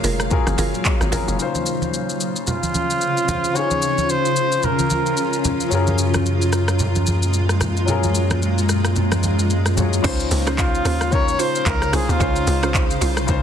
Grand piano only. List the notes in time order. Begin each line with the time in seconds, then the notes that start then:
Already playing: F#3 C#4 F4 G#4 A#4 C#5 F5
0.30 F#3 C#4 F4 G#4 A#4
1.11 F#3 C#4 F4 G#4 A#4
1.36 C#3 C#4 D#4
1.41 F4 C5
3.53 C#3 C#4 D#4
3.57 F4 G#4
5.69 F#3 C#4 F4
5.73 G#4 A#4
7.85 F#3 C#4 F4
7.89 G#4 A#4
9.76 F#3 C#4 F4 G#4 C#5
10.03 C#3 C#4 D#4 F4 C5
11.11 C#3 C#4 D#4 F4 A#4
11.92 C#3 C#4 D#4 F4 G#4
12.19 C#3 C#4 D#4 F4 C5
13.27 C#3 C#4 D#4 F4 C5